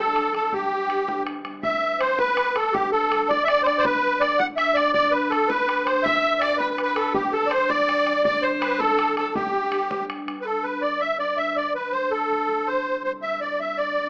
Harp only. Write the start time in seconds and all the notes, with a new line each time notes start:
Already playing: D1 A3 C4 D4
0.00 D2
0.15 F#3 C4 D4
0.34 F#3 D4
0.53 G1 G2
0.71 G3 B3 D4
0.89 G3 B3 D4
1.08 D2
1.26 G3 B3 D4
1.44 G3 B3 D4
1.63 A1 A2
1.99 A3 B3 C4
2.18 A3 B3 C4
2.55 A3 B3 C4
2.74 D1 D2
3.10 G3 A3 D4
3.28 G3 A3 D4
3.66 G3 A3 D4
3.85 B1 B2
4.20 A3 B3 D4
4.39 A3 B3 D4
4.76 A3 B3 D4
4.94 D2 D3
5.31 A3 D4 F#4
5.51 F#4
5.86 A3 D4 F#4
6.04 A1 A2
6.41 A3 D4 F#4
6.59 A3 D4 F#4
6.96 A3 D4 F#4
7.14 E1 E2
7.52 G3
7.69 G3 D4 E4
8.06 G3 D4 E4
8.25 D1 D2
8.63 G3 C4 D4
8.81 D1 D2
9.17 F#3 C4 D4
9.36 G1 G2
9.72 G3 B3 D4
9.91 G3 B3 D4
10.28 G3 B3 D4
10.46 G2
10.64 G3 B3 D4
10.83 G3 B3 D4
11.01 D2
11.19 G3 B3 D4
11.38 G3 B3 D4
11.56 D2
11.75 F#3 A3 D4
11.92 F#3 A3 D4
12.12 A2
12.29 F#3 A3 D4
12.48 F#3 A3 D4
12.67 C2
12.85 G3 C4 E4
13.04 G3 C4 E4
13.22 G2
13.41 G3 C4 E4
13.60 G3 C4 E4
13.78 D2
13.96 F#3 A3 D4